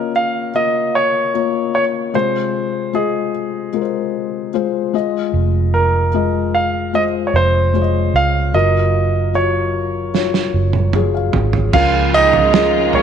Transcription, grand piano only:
0.00 0.11 A#4 medium
0.16 0.56 F5 medium
0.56 0.96 D#5 medium
0.95 1.73 C#5 medium
1.75 1.84 C#5 medium
2.15 2.97 C5 medium
2.95 4.50 G#4 medium
5.74 6.56 A#4 medium
6.55 6.92 F5 medium
6.95 7.02 D#5 medium
7.27 7.34 C#5 medium
7.36 8.17 C5 medium
8.16 8.56 F5 medium
8.54 9.37 D#5 medium
9.35 10.91 C#5 medium
11.74 12.12 F4 medium
11.74 12.15 F5 medium
12.14 12.91 D#4 medium
12.14 12.97 D#5 loud
12.95 13.02 C#4 medium
12.95 13.02 C#5 medium

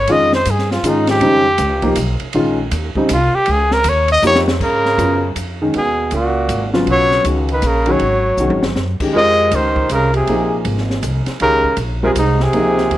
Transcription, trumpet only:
0.00 0.13 C#5 loud
0.12 0.34 D#5 loud
0.35 0.52 C5 medium
0.50 0.71 G#4 medium
0.72 0.89 F4 medium
0.88 1.10 D#4 medium
1.10 1.94 G4 loud
3.13 3.37 F4 loud
3.35 3.52 G4 loud
3.51 3.74 G#4 loud
3.73 3.90 A#4 loud
3.89 4.11 C#5 medium
4.12 4.23 D#5 loud
4.27 4.40 C#5 loud
4.63 5.33 A#4 loud
5.77 6.11 G#4 loud
6.16 6.72 F#4 medium
6.91 7.25 C#5 loud
7.52 7.68 B4 medium
7.67 7.93 A#4 medium
7.91 8.65 C#5 medium
9.17 9.57 D#5 loud
9.55 9.91 C5 loud
9.93 10.14 A#4 medium
10.16 10.63 G#4 medium
11.42 11.77 A#4 loud
12.05 12.11 G#4 medium
12.18 12.44 D#4 medium
12.43 12.98 G#4 medium

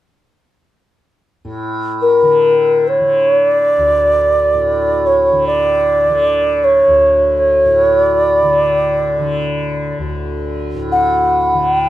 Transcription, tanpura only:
1.45 4.54 A2 soft
2.22 3.00 D3 soft
3.00 5.32 D3 soft
3.78 6.87 D2 soft
4.54 7.65 A2 soft
5.32 6.08 D3 soft
6.08 8.43 D3 medium
6.87 9.98 D2 soft
7.65 10.74 A2 medium
8.43 9.19 D3 soft
9.19 11.53 D3 soft
9.98 11.89 D2 soft
10.74 11.89 A2 soft
11.53 11.89 D3 medium

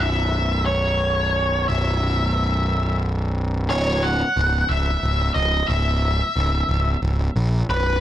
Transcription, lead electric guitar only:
0.00 0.65 E5 medium
0.66 1.68 C#5 medium
1.68 2.98 E5 medium
3.70 4.04 C#5 medium
4.03 4.72 F#5 medium
4.69 5.32 E5 medium
5.34 5.67 D#5 medium
5.68 6.98 E5 medium
7.70 8.00 B4 medium

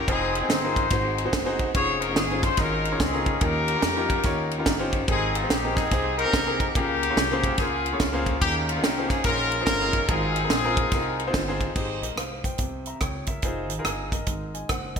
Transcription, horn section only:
0.09 0.88 C4 medium
0.09 0.48 D#4 medium
0.09 0.35 G#4 loud
0.36 0.49 G#4 medium
0.50 1.29 D#4 medium
0.50 1.29 G#4 medium
0.50 1.33 C5 loud
1.75 2.15 G#4 medium
1.75 2.00 C#5 loud
2.01 2.17 A#4 loud
2.17 2.41 G#4 medium
2.43 2.58 C5 loud
2.59 3.00 C#4 medium
2.59 3.39 D#4 medium
2.59 3.00 A#4 loud
3.01 3.39 C4 medium
3.01 3.39 C#4 medium
3.01 3.42 G#4 loud
3.43 4.63 C#4 medium
3.43 4.63 G4 medium
3.43 4.67 A#4 loud
5.10 5.74 C4 medium
5.10 5.74 D#4 medium
5.10 5.34 G#4 loud
5.35 5.50 F4 medium
5.49 5.76 G4 medium
5.75 6.55 C4 medium
5.75 6.17 D#4 medium
5.75 6.18 G#4 loud
6.17 6.71 D#4 medium
6.17 6.71 G4 medium
6.17 6.71 A#4 loud
6.76 7.55 A#3 medium
6.76 7.55 G4 loud
7.59 8.38 F4 medium
7.59 8.00 G#4 medium
8.41 9.21 A#3 medium
8.41 9.21 C#4 medium
8.41 8.53 G4 loud
8.69 8.83 F4 medium
8.83 9.10 G4 medium
9.09 9.24 G#4 loud
9.24 9.67 C#4 medium
9.24 9.66 F4 medium
9.24 9.63 A#4 loud
9.65 10.06 C#4 medium
9.65 10.06 F4 medium
9.65 10.05 A#4 loud
10.08 11.31 C4 medium
10.08 11.31 F4 medium
10.08 11.34 G#4 loud

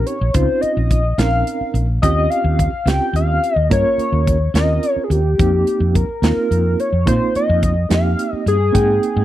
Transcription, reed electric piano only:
0.00 0.17 C4 medium
0.00 0.17 C#4 medium
0.00 0.17 D#4 medium
0.00 0.18 G4 medium
0.35 1.01 C4 medium
0.35 1.01 C#4 medium
0.35 1.01 D#4 medium
0.35 1.02 F4 medium
1.18 1.84 C4 medium
1.18 1.85 C#4 medium
1.18 1.85 D#4 medium
1.18 1.85 A#4 medium
2.02 2.69 C4 medium
2.02 2.69 C#4 medium
2.02 2.69 F4 medium
2.02 2.70 G4 medium
2.86 3.52 C4 medium
2.86 3.53 C#4 medium
2.86 3.53 F4 medium
2.86 3.53 G4 medium
3.70 4.36 A#3 medium
3.70 4.37 C#4 medium
3.70 4.37 F4 medium
3.70 4.37 A#4 medium
4.54 5.20 C4 medium
4.54 5.21 C#4 medium
4.54 5.21 F4 medium
4.54 5.21 A#4 medium
5.38 6.05 A#3 medium
5.38 6.05 C4 medium
5.38 6.05 D#4 medium
5.38 6.05 G4 medium
6.22 6.88 A#3 medium
6.22 6.89 C4 medium
6.22 6.89 D#4 medium
6.22 6.89 F4 medium
7.06 7.72 A#3 medium
7.06 7.73 C4 medium
7.06 7.73 D#4 medium
7.06 7.73 F4 medium
7.89 8.56 A#3 medium
7.89 8.56 C4 medium
7.89 8.56 D#4 medium
7.89 8.57 G4 medium
8.72 9.25 A#3 medium
8.72 9.25 C4 medium
8.72 9.25 D#4 medium
8.72 9.25 G5 medium

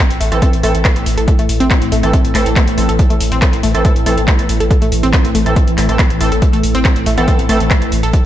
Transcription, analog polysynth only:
0.32 0.40 E3 loud
0.32 0.40 C4 medium
0.32 0.40 A4 loud
0.42 0.51 E3 medium
0.42 0.51 C4 medium
0.42 0.51 A4 loud
0.63 0.72 E3 loud
0.63 0.72 C4 medium
0.63 0.72 A4 loud
2.03 2.11 E3 loud
2.03 2.11 C4 medium
2.03 2.11 A4 loud
2.35 2.49 E3 medium
2.35 2.49 C4 medium
2.35 2.49 A4 loud
2.78 2.87 E3 medium
2.78 2.87 C4 medium
2.78 2.87 A4 medium
3.75 3.83 E3 loud
3.75 3.83 C4 medium
3.75 3.83 A4 loud
3.85 3.94 E3 medium
3.85 3.94 A4 loud
4.06 4.15 E3 loud
4.06 4.15 C4 loud
4.06 4.15 A4 loud
5.46 5.54 E3 loud
5.46 5.54 C4 medium
5.46 5.54 A4 loud
5.89 5.97 E3 medium
5.89 5.97 C4 medium
5.89 5.97 A4 medium
6.21 6.30 E3 medium
6.21 6.30 C4 medium
6.21 6.30 A4 loud
7.18 7.26 E3 loud
7.18 7.26 C4 medium
7.18 7.26 A4 loud
7.28 7.37 E3 medium
7.28 7.37 C4 medium
7.28 7.37 A4 loud
7.49 7.58 E3 loud
7.49 7.58 C4 medium
7.49 7.58 A4 loud

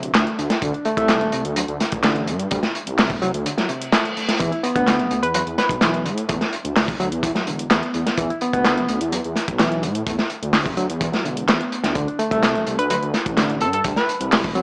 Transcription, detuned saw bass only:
0.00 0.11 D1 medium
0.15 0.25 D2 medium
0.38 0.48 D2 loud
0.62 0.72 D2 loud
0.97 1.23 C2 medium
1.21 1.31 D1 medium
1.33 1.43 C2 medium
1.45 1.64 D2 loud
1.68 1.78 D2 medium
1.92 2.29 A1 medium
2.27 2.47 G2 medium
2.51 2.61 D2 loud
2.87 3.11 C2 medium
3.10 3.20 D1 medium
3.22 3.32 C2 medium
3.34 3.45 D2 loud
4.41 4.50 E2 loud
4.75 5.00 D2 loud
4.99 5.09 E1 medium
5.11 5.21 D2 medium
5.23 5.42 E2 loud
5.47 5.56 E2 medium
5.69 6.07 B1 medium
6.05 6.25 A2 loud
6.29 6.39 E2 loud
6.64 6.90 D2 medium
6.88 6.98 E1 medium
7.00 7.10 D2 medium
7.12 7.31 E2 loud
7.47 7.67 E1 medium
7.71 7.81 E2 medium
7.94 8.04 E2 loud
8.18 8.28 E2 loud
8.53 8.79 D2 medium
8.77 8.87 E1 medium
8.89 8.99 D2 medium
9.01 9.20 E2 loud
9.25 9.34 E2 medium
9.48 9.85 B1 loud
9.83 10.03 A2 loud
10.07 10.17 E2 loud
10.42 10.67 D2 medium
10.66 10.75 E1 medium
10.77 10.87 D2 medium
10.90 11.09 E2 loud
11.25 11.44 E1 medium
11.48 11.58 E1 medium
11.84 11.94 D2 loud
11.95 12.05 D2 loud
12.31 12.56 C2 medium
12.55 12.65 D1 medium
12.67 12.77 C2 medium
12.79 12.98 D2 medium
13.02 13.12 D2 medium
13.26 13.62 A1 medium
13.61 13.81 G2 medium
13.85 13.95 D2 loud
14.20 14.46 C2 medium
14.44 14.54 D1 medium
14.55 14.62 C2 medium

